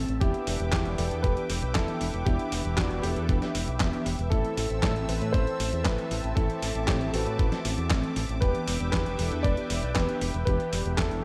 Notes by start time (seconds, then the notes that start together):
Already playing: C4 E5 A5 E6
0.09 A1, closed hi-hat
0.20 E1 E3 B3 D4 E4 G4 B4 E5 G5 D6, kick, closed hi-hat
0.34 closed hi-hat
0.47 E1, open hi-hat
0.60 E1 E3 B3 D4 G4, closed hi-hat
0.71 E2 E4 G4, kick, snare, clap, closed hi-hat
0.85 E1, closed hi-hat
0.98 E1 E3 B3 D4 A4, open hi-hat
1.11 E2, closed hi-hat
1.23 E1 G4 B4, kick, closed hi-hat
1.37 E3 B3 D4 G4, closed hi-hat
1.50 E1, open hi-hat
1.62 B1, closed hi-hat
1.74 E3 B3 D4 E4 G4 A4, kick, snare, clap, closed hi-hat
1.88 closed hi-hat
2.01 E1, open hi-hat
2.14 E1, closed hi-hat
2.25 E1 E3 B3 D4 E4 G4, kick, closed hi-hat
2.39 closed hi-hat
2.52 E1, open hi-hat
2.65 E1 E3 B3 D4 G4
2.76 E2 D4 F#4, kick, snare, clap, closed hi-hat
2.91 E1, closed hi-hat
3.02 E1 E3 B3 D4 E4 G4 A4, open hi-hat
3.16 E2, closed hi-hat
3.29 E1, kick, closed hi-hat
3.42 E3 B3 D4 G4, snare, closed hi-hat
3.55 E1, open hi-hat
3.67 B1, closed hi-hat
3.80 E1 E3 B3 D4 G4, kick, snare, clap, closed hi-hat
3.93 closed hi-hat
4.06 E1, open hi-hat
4.19 E1, closed hi-hat
4.30 A1 E3 A3 C4 E4 A4 A5 E6, kick, closed hi-hat
4.45 closed hi-hat
4.57 A1, open hi-hat
4.70 A1 E3 A3 C4 A4, closed hi-hat
4.81 A2 E4 A4, kick, snare, clap, closed hi-hat
4.96 A1, closed hi-hat
5.08 A1 E3 A3 C4 B4, open hi-hat
5.21 A2, closed hi-hat
5.33 A1 A4 C5, kick, closed hi-hat
5.47 E3 A3 C4 A4, closed hi-hat
5.60 A1, open hi-hat
5.73 E2, closed hi-hat
5.84 A1 E3 A3 C4 E4 A4 B4, kick, snare, clap, closed hi-hat
5.98 closed hi-hat
6.11 A1, open hi-hat
6.24 A1, closed hi-hat
6.35 A1 E3 A3 C4 E4 A4 D6, kick, closed hi-hat
6.50 closed hi-hat
6.62 A1, open hi-hat
6.75 A1 E3 A3 C4 A4, closed hi-hat
6.87 A2 E4 G4, kick, snare, clap, closed hi-hat
7.01 A1, closed hi-hat
7.12 A1 E3 A3 C4 F#4 A4 B4, open hi-hat
7.26 A2, closed hi-hat
7.39 A1, kick, closed hi-hat
7.52 E3 A3 C4 A4, snare, closed hi-hat
7.65 A1, open hi-hat
7.78 E2, closed hi-hat
7.90 A1 E3 A3 C4 A4, kick, snare, clap, closed hi-hat
8.03 closed hi-hat
8.16 A1, open hi-hat
8.29 A1, closed hi-hat
8.41 E1 E3 B3 D4 G4 B4 E5 G5, kick, closed hi-hat
8.55 closed hi-hat
8.68 E1, open hi-hat
8.80 E1 E3 B3 D4 G4
8.92 E2 G4 B4, kick, snare, clap, closed hi-hat
9.06 E1, closed hi-hat
9.19 E1 E3 B3 D4 A4, open hi-hat
9.32 E2, closed hi-hat
9.43 E1 B4 D5, kick, closed hi-hat
9.57 E3 B3 D4 G4, closed hi-hat
9.70 E1, open hi-hat
9.83 B1, closed hi-hat
9.94 E1 E3 B3 D4 G4 B4, kick, snare, clap, closed hi-hat
10.09 closed hi-hat
10.21 E1, open hi-hat
10.34 E1, closed hi-hat
10.45 E1 E3 B3 D4 G4 B4, kick, closed hi-hat
10.60 closed hi-hat
10.73 E1, open hi-hat
10.85 E1 E3 B3 D4 G4, closed hi-hat
10.97 E2 E4 A4, kick, snare, clap, closed hi-hat
11.11 E1, closed hi-hat